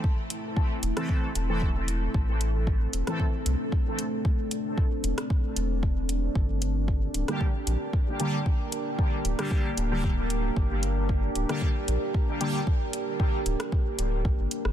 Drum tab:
HH |--x---xx--x---x-|--x---xx--x---x-|--x---xx--x---x-|--x---xx--x---x-|
SD |-------r--------|-------r--------|-------r--------|-------r--------|
BD |o---o---o---o---|o---o---o---o---|o---o---o---o---|o---o---o---o---|

HH |--x---xx--x---x-|--x---xx--x---x-|--x---xx--x---x-|
SD |-------r--------|-------r--------|-------r-------r|
BD |o---o---o---o---|o---o---o---o---|o---o---o---o---|